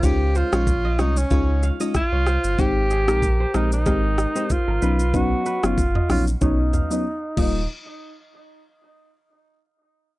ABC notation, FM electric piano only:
X:1
M:4/4
L:1/16
Q:"Swing 16ths" 1/4=94
K:Dblyd
V:1 name="FM electric piano"
[A,DEF]3 [A,DEF] z2 [A,DEF] z [A,DEF]3 [A,DEF] z4 | [A,CEG]3 [A,CEG] z2 [A,CEG] z [A,CEG]3 [A,CEG] z2 [^F,=B,^C^D] z | [^F,=B,^C^D]3 [F,B,CD] z2 [F,B,CD] z [F,B,CD]3 [F,B,CD] z2 [G,_B,E=F]2 | z16 |]